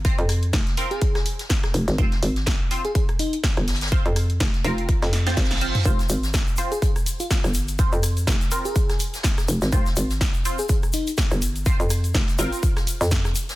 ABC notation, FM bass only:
X:1
M:4/4
L:1/16
Q:"Swing 16ths" 1/4=124
K:Fm
V:1 name="FM bass" clef=bass
G,,, F,,3 F,,,2 z8 F,,, A,,, | F,,,2 A,,,3 z8 G,,,3- | G,,, F,,3 F,,,2 F,,,3 F,,3 A,,,3 z | F,,,2 A,,,3 z8 G,,,3- |
G,,, F,,3 F,,,2 z8 F,,, A,,, | F,,,2 A,,,3 z8 G,,,3- | G,,, F,,3 F,,,2 A,,, z4 F,,3 z2 |]